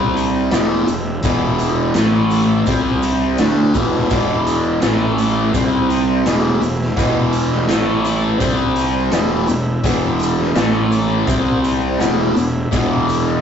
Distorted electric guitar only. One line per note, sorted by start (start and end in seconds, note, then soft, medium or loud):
0.00 0.51 C3 medium
0.00 0.51 G3 medium
0.00 0.51 C4 medium
0.52 0.86 E2 medium
0.52 0.86 B2 medium
0.52 0.87 E3 medium
0.87 1.16 E2 medium
0.87 1.16 B2 medium
1.24 1.94 E2 medium
1.24 1.95 B2 medium
1.24 1.95 E3 loud
1.96 2.66 A2 medium
1.96 2.66 E3 medium
1.96 2.67 A3 loud
2.68 3.38 C3 medium
2.68 3.38 G3 loud
2.68 3.39 C4 medium
3.39 3.74 D3 medium
3.39 3.74 A3 medium
3.39 3.74 D4 medium
3.75 4.09 E2 medium
3.75 4.09 B2 medium
3.75 4.10 E3 medium
4.10 4.81 E2 medium
4.10 4.81 B2 medium
4.10 4.81 E3 medium
4.82 5.53 A2 medium
4.82 5.53 E3 medium
4.82 5.53 A3 medium
5.54 6.25 C3 loud
5.54 6.25 G3 medium
5.54 6.25 C4 loud
6.26 6.60 E2 medium
6.26 6.60 B2 loud
6.26 6.61 E3 loud
6.61 6.90 E2 medium
6.61 6.90 B2 medium
6.97 7.68 E2 medium
6.97 7.68 B2 medium
6.97 7.67 E3 loud
7.68 8.39 A2 medium
7.68 8.40 E3 medium
7.68 8.40 A3 loud
8.39 9.11 C3 medium
8.39 9.11 G3 loud
8.39 9.11 C4 loud
9.12 9.47 E2 medium
9.12 9.47 B2 loud
9.12 9.48 E3 loud
9.48 9.77 E2 medium
9.48 9.77 B2 medium
9.83 10.55 E2 medium
9.83 10.55 B2 medium
9.83 10.55 E3 loud
10.55 11.26 A2 medium
10.55 11.27 E3 medium
10.55 11.27 A3 loud
11.27 11.98 C3 loud
11.27 11.99 G3 medium
11.27 11.99 C4 loud
11.99 12.34 E2 medium
11.99 12.35 B2 medium
11.99 12.35 E3 medium
12.35 12.65 E2 medium
12.35 12.65 B2 medium
12.71 13.41 E2 medium
12.71 13.41 B2 medium
12.71 13.41 E3 loud